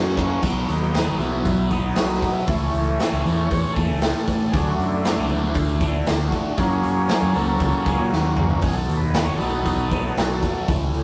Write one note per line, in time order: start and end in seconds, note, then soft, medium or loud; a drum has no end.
0.00 0.36 F#2 loud
0.00 0.40 F#2 medium
0.00 0.17 C#3 loud
0.00 0.16 F#3 loud
0.00 0.42 C#4 medium
0.00 0.39 F#4 medium
0.00 0.42 A#4 medium
0.00 0.42 C#5 medium
0.00 0.39 F#5 medium
0.00 low conga medium
0.16 0.42 C#3 medium
0.16 0.41 F#3 medium
0.16 kick medium
0.16 ride medium
0.16 low conga medium
0.30 high conga medium
0.42 0.65 B1 loud
0.42 0.93 B2 medium
0.42 0.94 F#3 loud
0.42 2.45 F#3 soft
0.42 2.44 B3 soft
0.42 0.95 B3 loud
0.42 kick loud
0.42 crash loud
0.67 1.08 D#2 medium
0.67 1.17 D#4 medium
0.67 open hi-hat medium
0.94 1.45 B2 medium
0.94 1.21 F#3 medium
0.94 1.19 B3 medium
0.94 snare loud
0.94 open hi-hat medium
1.07 1.18 G#1 medium
1.19 1.41 B1 medium
1.19 1.72 F#3 medium
1.19 1.71 B3 medium
1.19 1.72 E4 medium
1.19 open hi-hat soft
1.19 low conga medium
1.31 high conga medium
1.45 1.90 B1 medium
1.45 kick medium
1.45 open hi-hat medium
1.70 1.97 F#3 medium
1.70 1.98 B3 medium
1.70 1.97 D#4 medium
1.70 kick medium
1.70 open hi-hat medium
1.70 high conga medium
1.70 low conga medium
1.83 high conga medium
1.96 2.19 B1 medium
1.96 2.47 B2 medium
1.96 2.47 F#3 medium
1.96 2.48 B3 medium
1.96 2.08 C#4 medium
1.96 snare loud
1.96 open hi-hat medium
2.08 2.35 D#4 medium
2.08 high conga medium
2.22 kick medium
2.22 open hi-hat medium
2.22 low conga medium
2.34 2.61 E4 medium
2.47 2.70 C#2 loud
2.47 2.99 A2 medium
2.47 3.21 E3 soft
2.47 3.00 E3 loud
2.47 3.21 A3 medium
2.47 3.02 A3 medium
2.47 2.56 C#4 medium
2.47 kick loud
2.47 open hi-hat medium
2.58 3.26 C#4 medium
2.73 2.95 C#2 medium
2.73 open hi-hat medium
3.00 3.51 A2 medium
3.00 3.27 E3 medium
3.00 3.26 A3 medium
3.00 snare loud
3.00 open hi-hat medium
3.12 3.23 C#2 loud
3.24 3.47 E2 medium
3.24 3.49 E3 soft
3.24 3.78 E3 medium
3.24 3.76 A3 medium
3.24 3.49 A3 soft
3.24 3.49 C#4 soft
3.24 open hi-hat soft
3.24 low conga medium
3.39 high conga medium
3.46 3.75 C#5 loud
3.51 3.62 E2 medium
3.51 kick loud
3.51 open hi-hat medium
3.73 3.88 E2 loud
3.73 4.04 A3 medium
3.73 4.22 A4 medium
3.73 kick medium
3.73 open hi-hat medium
3.73 high conga medium
3.73 low conga medium
3.79 4.02 E3 medium
3.88 4.11 C#2 medium
3.88 high conga medium
4.01 4.52 A2 medium
4.01 4.52 E3 medium
4.01 4.53 A3 medium
4.01 snare loud
4.01 open hi-hat medium
4.15 high conga medium
4.23 4.52 A4 medium
4.23 low conga medium
4.28 kick medium
4.28 open hi-hat medium
4.49 4.76 D2 medium
4.49 4.69 G#4 loud
4.49 open hi-hat medium
4.54 5.03 D3 medium
4.54 5.27 F#3 medium
4.54 5.26 A3 soft
4.54 5.04 A3 medium
4.54 5.27 D4 medium
4.54 5.05 D4 loud
4.54 kick loud
4.67 4.86 F#4 medium
4.78 5.18 F#2 medium
4.78 open hi-hat soft
4.83 6.09 E4 medium
5.04 5.56 D3 medium
5.04 5.31 A3 medium
5.04 5.29 D4 loud
5.04 snare loud
5.04 open hi-hat medium
5.17 5.28 C#2 medium
5.29 5.52 D2 medium
5.29 5.53 F#3 medium
5.29 5.53 A3 soft
5.29 5.82 A3 medium
5.29 5.81 D4 medium
5.29 5.54 D4 soft
5.29 open hi-hat soft
5.29 low conga medium
5.42 high conga medium
5.54 6.00 D2 medium
5.54 kick loud
5.54 open hi-hat medium
5.79 6.08 D4 medium
5.79 kick medium
5.79 open hi-hat medium
5.79 high conga medium
5.79 low conga medium
5.84 6.07 A3 medium
5.91 high conga medium
6.07 6.29 D2 medium
6.07 6.57 D3 medium
6.07 6.57 A3 medium
6.07 6.58 D4 medium
6.07 snare loud
6.07 open hi-hat medium
6.17 high conga medium
6.28 6.56 F#4 medium
6.28 low conga medium
6.32 kick medium
6.32 open hi-hat medium
6.57 7.07 F#2 medium
6.57 6.80 F#2 loud
6.57 7.08 C#3 medium
6.57 7.10 F#3 loud
6.57 8.60 F#3 soft
6.57 8.60 A#3 soft
6.57 8.60 C#4 medium
6.57 7.37 G#4 medium
6.57 kick loud
6.57 open hi-hat medium
6.83 7.06 F#2 medium
6.83 open hi-hat medium
7.09 7.60 F#2 medium
7.09 7.36 C#3 loud
7.09 7.35 F#3 medium
7.09 snare loud
7.09 open hi-hat medium
7.22 7.33 F#2 loud
7.33 7.57 C#2 medium
7.33 7.85 F#3 medium
7.33 7.58 A4 medium
7.33 open hi-hat medium
7.33 low conga medium
7.37 7.86 C#3 medium
7.45 high conga medium
7.59 7.71 C#2 loud
7.59 7.86 A4 medium
7.59 kick loud
7.59 open hi-hat medium
7.59 high conga medium
7.84 7.97 C#2 medium
7.84 8.11 C#3 medium
7.84 8.12 F#3 medium
7.84 8.09 G#4 medium
7.84 kick medium
7.84 open hi-hat medium
7.84 high conga medium
7.84 low conga medium
7.98 8.10 A#2 medium
7.98 high conga medium
8.11 8.35 D#2 medium
8.11 8.61 F#2 medium
8.11 8.62 C#3 medium
8.11 8.62 F#3 medium
8.11 8.35 F#4 medium
8.11 snare medium
8.36 8.60 C#2 medium
8.36 mid tom medium
8.36 low conga medium
8.50 floor tom medium
8.61 8.85 B1 loud
8.61 9.13 B2 medium
8.61 9.15 F#3 loud
8.61 9.16 B3 loud
8.61 8.76 G#4 medium
8.61 kick loud
8.61 open hi-hat medium
8.73 9.01 A4 medium
8.88 9.28 D#2 medium
8.88 open hi-hat medium
8.97 9.10 B4 medium
9.11 9.66 B2 medium
9.11 9.26 B4 medium
9.11 snare loud
9.11 open hi-hat medium
9.16 9.41 F#3 loud
9.16 9.39 B3 loud
9.24 9.38 G#1 medium
9.24 9.37 C#5 medium
9.36 10.13 F#3 medium
9.36 10.12 B3 soft
9.36 10.12 D#4 medium
9.36 9.45 A4 medium
9.36 low conga medium
9.40 9.62 B1 medium
9.40 9.93 F#3 medium
9.40 9.91 B3 medium
9.40 open hi-hat soft
9.47 10.73 A4 medium
9.52 high conga medium
9.65 10.10 B1 medium
9.65 kick medium
9.65 open hi-hat medium
9.90 10.18 B3 medium
9.90 kick medium
9.90 open hi-hat medium
9.90 high conga medium
9.90 low conga medium
9.94 10.17 F#3 medium
10.03 high conga medium
10.17 10.39 B1 medium
10.17 10.67 B2 medium
10.17 10.67 F#3 medium
10.17 10.68 B3 medium
10.17 snare loud
10.17 open hi-hat medium
10.43 kick medium
10.43 open hi-hat medium
10.43 low conga medium
10.68 10.90 C#2 loud
10.68 11.04 A2 medium
10.68 11.04 E3 loud
10.68 11.04 A3 medium
10.68 kick loud
10.68 open hi-hat medium
10.94 open hi-hat medium